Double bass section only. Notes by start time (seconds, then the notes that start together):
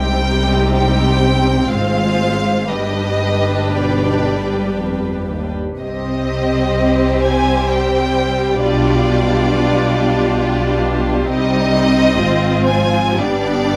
Already playing: C2
1.70 G#1
2.69 G1
5.81 C2
8.61 B1
11.28 C2
12.18 G#1
13.17 G1